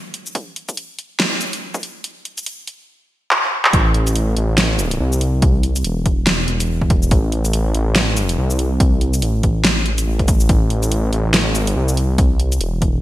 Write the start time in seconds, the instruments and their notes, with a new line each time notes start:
0.14 closed hi-hat
0.26 shaker
0.35 kick, closed hi-hat
0.56 closed hi-hat
0.69 kick, closed hi-hat, shaker
0.77 closed hi-hat
0.99 closed hi-hat
1.20 snare, closed hi-hat
1.41 closed hi-hat, shaker
1.53 closed hi-hat
1.74 kick, shaker
1.83 closed hi-hat
2.04 closed hi-hat
2.25 closed hi-hat
2.38 closed hi-hat, shaker
2.46 closed hi-hat
2.67 closed hi-hat
3.31 clap
3.65 clap
3.73 detuned saw bass A1, kick, closed hi-hat
3.94 closed hi-hat
4.07 closed hi-hat, shaker
4.16 closed hi-hat
4.37 detuned saw bass A1, closed hi-hat
4.58 snare, closed hi-hat
4.79 closed hi-hat, shaker
4.91 closed hi-hat
5.00 detuned saw bass C2
5.12 shaker
5.21 closed hi-hat
5.42 kick, closed hi-hat
5.63 closed hi-hat
5.76 closed hi-hat, shaker
5.84 detuned saw bass E1, closed hi-hat
6.06 kick, closed hi-hat
6.27 snare, closed hi-hat
6.48 detuned saw bass E1, closed hi-hat
6.60 closed hi-hat, shaker
6.82 kick
6.90 kick, closed hi-hat
7.03 shaker
7.11 detuned saw bass A1, kick, closed hi-hat
7.32 closed hi-hat
7.45 closed hi-hat, shaker
7.53 closed hi-hat
7.75 detuned saw bass A1, closed hi-hat
7.96 snare, closed hi-hat
8.17 closed hi-hat, shaker
8.29 closed hi-hat
8.38 detuned saw bass C2
8.50 shaker
8.59 closed hi-hat
8.80 kick, closed hi-hat
9.01 closed hi-hat
9.14 closed hi-hat, shaker
9.22 detuned saw bass A1, closed hi-hat
9.43 kick, closed hi-hat
9.65 snare, closed hi-hat
9.86 closed hi-hat
9.98 closed hi-hat, shaker
10.07 detuned saw bass A1
10.19 kick, closed hi-hat
10.28 kick, closed hi-hat, shaker
10.40 shaker
10.49 detuned saw bass A1, kick, closed hi-hat
10.70 closed hi-hat
10.83 closed hi-hat, shaker
10.92 closed hi-hat
11.13 detuned saw bass A1, closed hi-hat
11.34 snare, closed hi-hat
11.55 detuned saw bass G#1, closed hi-hat, shaker
11.67 closed hi-hat
11.76 detuned saw bass C2
11.89 shaker
11.97 closed hi-hat
12.18 kick, closed hi-hat
12.40 closed hi-hat
12.52 closed hi-hat, shaker
12.61 detuned saw bass E1, closed hi-hat
12.82 kick, closed hi-hat